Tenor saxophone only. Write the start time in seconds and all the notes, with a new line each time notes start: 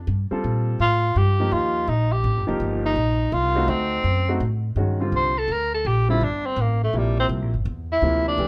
0.81 F4
1.17 G4
1.52 F4
1.89 D#4
2.12 G4
2.86 D#4
3.33 F4
3.70 C4
5.16 C5
5.38 A4
5.52 A#4
5.74 A4
5.87 G4
6.10 E4
6.24 D4
6.46 C4
6.61 A#3
6.84 A3
6.98 G3
7.20 C4
7.92 E4
8.28 D4